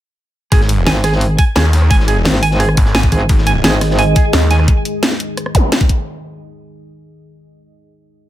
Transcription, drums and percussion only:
0.52 kick, closed hi-hat
0.61 snare
0.69 closed hi-hat
0.87 snare, closed hi-hat
0.95 snare
1.04 cross-stick, snare, closed hi-hat
1.12 snare
1.21 closed hi-hat
1.39 kick, closed hi-hat
1.55 snare, closed hi-hat
1.73 snare, closed hi-hat
1.82 cross-stick
1.91 kick, closed hi-hat
2.00 snare
2.08 closed hi-hat
2.25 snare, closed hi-hat
2.34 snare
2.43 closed hi-hat
2.51 snare
2.60 cross-stick, closed hi-hat
2.69 cross-stick
2.77 kick, closed hi-hat
2.85 snare
2.95 snare, closed hi-hat
3.03 kick
3.12 kick, closed hi-hat
3.29 kick, closed hi-hat
3.38 snare
3.46 closed hi-hat
3.64 snare, closed hi-hat
3.73 snare
3.81 cross-stick, snare, closed hi-hat
3.91 snare
3.98 closed hi-hat
4.15 kick, closed hi-hat
4.33 snare, closed hi-hat
4.50 snare, closed hi-hat
4.59 cross-stick
4.68 kick, closed hi-hat
4.85 closed hi-hat
5.03 snare, closed hi-hat
5.11 snare
5.20 closed hi-hat
5.37 cross-stick, closed hi-hat
5.46 cross-stick
5.55 kick, closed hi-hat
5.72 snare, closed hi-hat
5.81 kick
5.89 kick, closed hi-hat

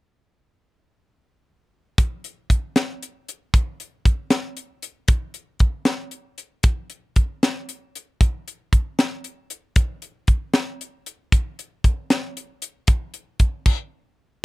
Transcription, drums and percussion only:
1.98 kick, closed hi-hat
2.24 closed hi-hat
2.50 kick, closed hi-hat
2.76 snare, closed hi-hat
3.03 closed hi-hat
3.29 closed hi-hat
3.54 kick, closed hi-hat
3.80 closed hi-hat
4.05 kick, closed hi-hat
4.30 snare, closed hi-hat
4.57 closed hi-hat
4.82 closed hi-hat
5.08 kick, closed hi-hat
5.34 closed hi-hat
5.59 kick, closed hi-hat
5.85 snare, closed hi-hat
6.11 closed hi-hat
6.38 closed hi-hat
6.63 kick, closed hi-hat
6.90 closed hi-hat
7.16 kick, closed hi-hat
7.43 snare, closed hi-hat
7.69 closed hi-hat
7.95 closed hi-hat
8.21 kick, closed hi-hat
8.48 closed hi-hat
8.73 kick, closed hi-hat
8.99 snare, closed hi-hat
9.24 closed hi-hat
9.50 closed hi-hat
9.76 kick, closed hi-hat
10.02 closed hi-hat
10.27 kick, closed hi-hat
10.54 snare, closed hi-hat
10.81 closed hi-hat
11.06 closed hi-hat
11.32 kick, closed hi-hat
11.59 closed hi-hat
11.84 kick, closed hi-hat
12.10 snare, closed hi-hat
12.37 closed hi-hat
12.62 closed hi-hat
12.87 kick, closed hi-hat
13.14 closed hi-hat
13.39 kick, closed hi-hat
13.66 kick, crash

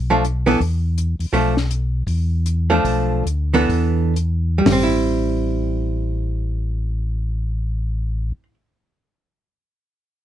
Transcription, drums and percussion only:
0.25 closed hi-hat
0.47 open hi-hat
0.60 kick, open hi-hat
0.98 closed hi-hat
1.20 open hi-hat
1.33 kick, open hi-hat
1.57 snare
1.71 closed hi-hat
2.07 kick, open hi-hat
2.46 closed hi-hat
2.85 kick, open hi-hat
3.27 closed hi-hat
3.54 open hi-hat
3.69 kick, open hi-hat
4.16 closed hi-hat
4.66 snare, floor tom, open hi-hat

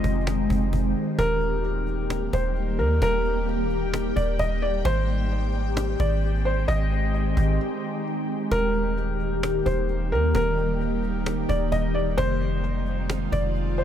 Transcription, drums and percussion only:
0.04 cajon bass
0.10 cajon slap
0.21 cajon slap
0.27 cajon slap
0.50 cajon bass
0.73 cajon bass
1.19 cajon bass
1.41 cajon slap
1.64 cajon slap
1.87 cajon slap
2.10 cajon slap
2.33 cajon bass
2.56 cajon slap
3.02 cajon bass
3.25 cajon slap
3.48 cajon slap
3.70 cajon slap
3.94 cajon slap
4.17 cajon bass
4.39 cajon bass
4.85 cajon bass
5.08 cajon slap
5.31 cajon slap
5.54 cajon slap
5.77 cajon slap
6.00 cajon bass
6.23 cajon slap
6.68 cajon bass
6.91 cajon slap
7.14 cajon slap
7.37 cajon bass
7.43 cajon slap
7.49 cajon slap
7.54 cajon slap
8.52 cajon bass
8.74 cajon slap
8.97 cajon slap
9.20 cajon slap
9.43 cajon slap
9.66 cajon bass
9.89 cajon slap
10.35 cajon bass
10.57 cajon slap
10.80 cajon slap
11.03 cajon slap
11.26 cajon slap
11.49 cajon bass
11.72 cajon bass
12.18 cajon bass
12.41 cajon slap
12.64 cajon slap
12.86 cajon slap
13.10 cajon slap
13.33 cajon bass
13.55 cajon slap

